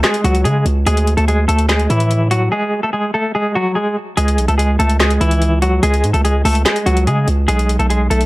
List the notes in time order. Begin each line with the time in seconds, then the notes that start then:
0.04 G#3 G#4, snare, clap, closed hi-hat
0.14 closed hi-hat
0.24 C#2 F#3 F#4, closed hi-hat
0.35 closed hi-hat
0.44 C#3 G#3 G#4, closed hi-hat
0.66 C#2, closed hi-hat
0.86 D2 G#3 G#4, closed hi-hat
0.97 closed hi-hat
1.07 closed hi-hat
1.17 D2 A3 A4, closed hi-hat
1.28 G#3 G#4, closed hi-hat
1.48 D2 A3 A4, closed hi-hat
1.59 closed hi-hat
1.69 G#3 G#4, snare, clap, closed hi-hat
1.79 closed hi-hat
1.90 A2 E3 E4, closed hi-hat
2.00 closed hi-hat
2.11 closed hi-hat
2.31 F#3 F#4, closed hi-hat
2.52 G#3 G#4
2.83 A3 A4
2.93 G#3 G#4
3.14 A3 A4
3.35 G#3 G#4
3.55 F#3 F#4
3.75 G#3 G#4
4.17 C#2 G#3 G#4, closed hi-hat
4.28 closed hi-hat
4.38 B1, closed hi-hat
4.48 C#2 A3 A4, closed hi-hat
4.58 G#3 G#4, closed hi-hat
4.79 C#2 A3 A4, closed hi-hat
4.89 closed hi-hat
5.00 G#3 G#4, snare, clap, closed hi-hat
5.10 closed hi-hat
5.21 C#2 E3 E4, closed hi-hat
5.31 closed hi-hat
5.42 closed hi-hat
5.62 F#3 F#4, closed hi-hat
5.83 C#2 G#3 G#4, closed hi-hat
5.94 closed hi-hat
6.04 G#2, closed hi-hat
6.13 C#2 A3 A4, closed hi-hat
6.25 G#3 G#4, closed hi-hat
6.45 C#2 A3 A4, open hi-hat
6.55 closed hi-hat
6.65 G#3 G#4, snare, clap, closed hi-hat
6.76 closed hi-hat
6.86 C#2 F#3 F#4, closed hi-hat
6.97 closed hi-hat
7.07 C#3 G#3 G#4, closed hi-hat
7.28 C#2, closed hi-hat
7.48 B1 G#3 G#4, closed hi-hat
7.59 closed hi-hat
7.69 closed hi-hat
7.79 B1 A3 A4, closed hi-hat
7.90 G#3 G#4, closed hi-hat
8.10 B1 A3 A4, closed hi-hat
8.21 closed hi-hat